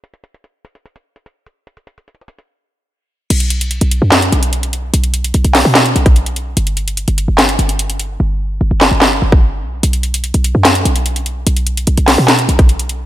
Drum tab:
CC |------------------------------------------------|------------------------------------------------|x-----------------------------------------------|------------------------------------------------|
HH |x--x--x--x--x-----x--x--x--x-----x--x-----x-----|x--x--x--x--x-x-x-x--x--------------------------|x--x--x--x--x--x--x-----x--x--x--x--x--x--x-----|x--x--x--x--x--x--o-----x--x--x--x--x--x--x-----|
CP |------------------------------------------------|------------------------------------------------|------------------------x-----------------------|------------------x-----x-----------------------|
SD |------------------------------------------------|------------------------------------------------|------------------------o-----------------------|------------------o-----o-----------------------|
BD |------------------------------------------------|------------------------------------------------|------------------------------------------------|---------------------------------o--------------|

CC |------------------------------------------------|------------------------------------------------|------------------------------------------------|------------------------------------------------|
HH |x--x--x--x--x--x--x-----x--x--x--x--x--x--x-----|------------------------------------------------|x--x--x--x--x--x--x-----x--x--x--x--x--x--x-----|x--x--x--x--x--x--o-----x--x--x--x--x--x--x-----|
CP |------------------------x-----------------------|------------------x-----x-----------------------|------------------------x-----------------------|------------------x-----x-----------------------|
SD |------------------------o-----------------------|------------------o-----o-----------------------|------------------------o-----------------------|------------------o-----o-----------------------|
BD |------------------------------------------------|---------------------------------o--------------|------------------------------------------------|---------------------------------o--------------|